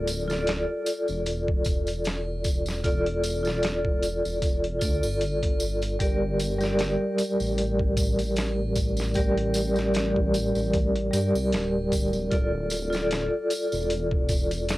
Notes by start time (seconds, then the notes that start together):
Already playing: D1 F4 A4 D5
0.08 closed hi-hat, tambourine
0.28 F4 A4, snare, tambourine
0.33 D5
0.47 snare, closed hi-hat, tambourine
0.86 closed hi-hat, tambourine
1.08 E1, tambourine
1.26 closed hi-hat, tambourine
1.48 kick
1.65 kick, closed hi-hat, tambourine
1.87 closed hi-hat, tambourine
2.04 snare, closed hi-hat, tambourine, triangle
2.44 kick, closed hi-hat, tambourine
2.66 snare, tambourine
2.84 F4 A4 D5, kick, closed hi-hat, tambourine
3.06 closed hi-hat
3.24 closed hi-hat, tambourine
3.43 F4 A4, tambourine
3.48 D5, snare
3.63 snare, closed hi-hat, tambourine
3.85 kick
4.03 closed hi-hat, tambourine
4.25 E1, tambourine
4.42 kick, closed hi-hat, tambourine
4.64 closed hi-hat
4.79 D2 F4 A4, kick, closed hi-hat, tambourine
4.85 D5
5.03 G1, tambourine, triangle
5.21 closed hi-hat, tambourine
5.43 kick, closed hi-hat
5.60 tambourine
5.82 closed hi-hat, tambourine
5.99 G1 G3 G4 A#4 D5, kick, closed hi-hat, tambourine
6.39 closed hi-hat, tambourine
6.59 G3 G4 A#4, tambourine
6.63 D5, snare
6.79 snare, closed hi-hat, tambourine
7.18 closed hi-hat, tambourine
7.40 A1, tambourine
7.58 closed hi-hat, tambourine
7.79 kick
7.97 kick, closed hi-hat, tambourine
8.19 closed hi-hat, tambourine
8.36 snare, closed hi-hat, tambourine, triangle
8.76 kick, closed hi-hat, tambourine
8.97 snare, tambourine
9.14 G3 G4 A#4 D5, kick, closed hi-hat, tambourine
9.38 closed hi-hat
9.54 closed hi-hat, tambourine
9.74 G3 G4 A#4, tambourine
9.79 D5, snare
9.94 snare, closed hi-hat, tambourine
10.16 kick
10.34 closed hi-hat, tambourine
10.55 A1, tambourine
10.73 kick, closed hi-hat, tambourine
10.95 closed hi-hat
11.11 G2 G3 G4 A#4, closed hi-hat, tambourine
11.16 D5
11.35 C2, tambourine, triangle
11.52 D1, snare, closed hi-hat, tambourine
11.92 kick, closed hi-hat, tambourine
12.13 tambourine
12.31 D1 F4 A4 D5, kick, closed hi-hat, tambourine
12.70 closed hi-hat, tambourine
12.90 F4 A4, tambourine
12.95 D5, snare
13.11 snare, closed hi-hat, tambourine
13.50 closed hi-hat, tambourine
13.72 E1, tambourine
13.90 closed hi-hat, tambourine
14.11 kick
14.29 kick, closed hi-hat, tambourine
14.51 closed hi-hat, tambourine
14.69 snare, closed hi-hat, tambourine, triangle